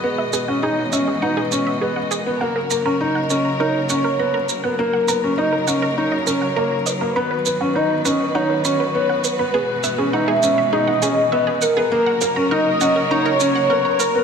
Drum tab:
SH |-x-x-x-x|-x-x-x-x|-x-x-x-x|-x-x-x-x|

SH |-x-x-x-x|-x-x-x-x|